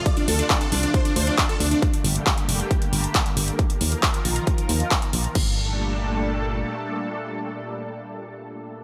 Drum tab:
CC |----------------|----------------|----------------|x---------------|
HH |xxoxxxoxxxoxxxox|xxoxxxoxxxoxxxox|xxoxxxoxxxoxxxox|----------------|
CP |----x-------x---|----x-------x---|----x-------x---|----------------|
BD |o---o---o---o---|o---o---o---o---|o---o---o---o---|o---------------|

CC |----------------|
HH |----------------|
CP |----------------|
BD |----------------|